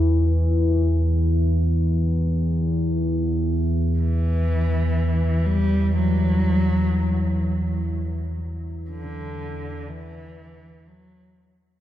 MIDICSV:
0, 0, Header, 1, 3, 480
1, 0, Start_track
1, 0, Tempo, 500000
1, 11331, End_track
2, 0, Start_track
2, 0, Title_t, "Cello"
2, 0, Program_c, 0, 42
2, 3827, Note_on_c, 0, 52, 73
2, 5237, Note_on_c, 0, 55, 85
2, 5252, Note_off_c, 0, 52, 0
2, 5713, Note_off_c, 0, 55, 0
2, 5718, Note_on_c, 0, 54, 86
2, 7099, Note_off_c, 0, 54, 0
2, 8553, Note_on_c, 0, 50, 69
2, 9489, Note_on_c, 0, 52, 87
2, 9503, Note_off_c, 0, 50, 0
2, 10438, Note_on_c, 0, 54, 94
2, 10453, Note_off_c, 0, 52, 0
2, 11150, Note_off_c, 0, 54, 0
2, 11331, End_track
3, 0, Start_track
3, 0, Title_t, "Synth drone"
3, 0, Program_c, 1, 95
3, 0, Note_on_c, 1, 40, 64
3, 0, Note_on_c, 1, 52, 73
3, 11331, Note_off_c, 1, 40, 0
3, 11331, Note_off_c, 1, 52, 0
3, 11331, End_track
0, 0, End_of_file